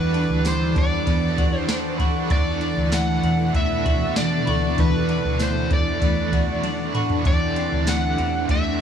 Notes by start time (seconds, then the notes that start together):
Already playing: E2 E3 G3 B3 D4 F#4 G4 A4 B4 D5 F#5
0.14 D4, ride
0.30 D2
0.45 C5, snare, ride, tambourine
0.76 E2 D4 D5, kick, ride
1.05 E2 B3 D4 G4, kick, ride
1.10 B4
1.38 F#4, kick, ride
1.59 C5
1.69 D4, snare, ride, tambourine
1.98 F#4 G4 B4, kick, ride
2.03 D4
2.28 E2 B2 E3 A3 D4, kick, ride
2.32 D4 F#4 D5
2.36 B4
2.61 D4, ride
2.77 D2
2.92 A3 F#5, snare, ride, tambourine
3.23 E2 D4, ride
3.53 E2 A3 D4 F#4 E5, kick, ride
3.58 B4
3.85 F#4, kick, ride
4.16 D4 D5, snare, ride, tambourine
4.45 D2 F#4 B4, ride
4.51 D4
4.75 E2 E3 A3, kick, ride
4.80 D4 F#4 B4
5.09 D4, ride
5.24 D2
5.39 A3 C5, snare, ride, tambourine
5.71 E2 D4 D5, kick, ride
6.00 E2 A3 D4 F#4, kick, ride
6.05 B4
6.33 F#4, kick, ride
6.63 D4, high tom, ride
6.93 F#4 B4, mid tom, ride
6.98 D4
7.10 floor tom
7.23 E2 E3 A3 C4 G4, kick, ride
7.27 D4 G4 C5 D5
7.56 C4, ride
7.72 D2
7.87 A3 F#5, snare, ride, tambourine
8.18 E2 C4, ride
8.48 E2 A3 D4 G4 E5, kick, ride
8.53 C5